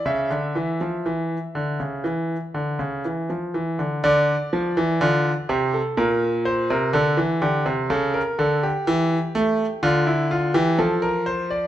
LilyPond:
<<
  \new Staff \with { instrumentName = "Grand piano" } { \time 4/4 \key d \minor \tempo 4 = 62 e''2.~ e''8 r8 | d''4 f'8 g'16 a'16 bes'8 c''16 bes'16 a'8 g'8 | a'16 bes'16 a'16 g'4~ g'16 f'16 e'16 f'16 g'16 a'16 bes'16 c''16 d''16 | }
  \new Staff \with { instrumentName = "Grand piano" } { \clef bass \time 4/4 \key d \minor cis16 d16 e16 f16 e8 d16 cis16 e8 d16 cis16 e16 f16 e16 d16 | d8 f16 e16 d8 c8 bes,8. c16 d16 e16 d16 c16 | cis8 d8 e8 a8 d8. e16 f4 | }
>>